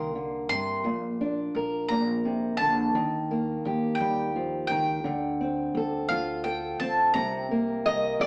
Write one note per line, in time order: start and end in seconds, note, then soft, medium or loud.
0.00 0.45 C2 medium
0.00 0.15 D#3 medium
0.00 1.20 A#3 medium
0.00 1.56 A#4 medium
0.00 0.48 C6 medium
0.15 0.50 D3 medium
0.49 0.82 G2 medium
0.49 0.85 C3 medium
0.49 1.85 C6 loud
0.84 1.51 A#1 medium
0.84 1.90 A#2 medium
1.21 2.91 D4 medium
1.55 1.88 A#1 medium
1.55 2.91 A#4 medium
1.89 2.56 A#1 medium
1.89 2.25 A#2 medium
1.89 2.57 A#5 medium
2.25 2.60 C3 medium
2.57 2.93 A#1 medium
2.57 2.94 D3 medium
2.57 3.94 A5 loud
2.95 3.61 D#2 medium
2.95 4.70 D#3 medium
3.31 5.05 A#3 medium
3.65 3.98 D#2 medium
3.65 5.06 G4 medium
3.95 4.66 G5 medium
4.01 4.67 D#2 medium
4.01 4.35 G3 medium
4.35 4.70 F3 medium
4.67 5.03 C#2 medium
4.67 5.04 D#3 medium
4.67 6.08 G5 medium
5.04 5.72 D2 medium
5.04 7.11 D3 medium
5.41 6.80 C4 medium
5.75 6.08 D2 medium
5.75 6.44 A4 medium
6.09 6.77 D2 loud
6.09 7.12 F4 medium
6.09 6.42 F5 medium
6.44 7.11 A4 medium
6.44 6.79 G5 medium
6.80 7.13 D2 medium
6.80 7.51 C4 medium
6.80 7.13 A5 medium
7.14 7.82 C2 medium
7.14 8.20 C3 medium
7.14 8.27 A#5 medium
7.51 8.27 A#3 medium
7.86 8.19 C2 medium
7.86 8.27 A#4 medium
7.86 8.20 D#5 loud
8.20 8.27 C2 medium
8.20 8.27 D#3 medium
8.20 8.27 D5 medium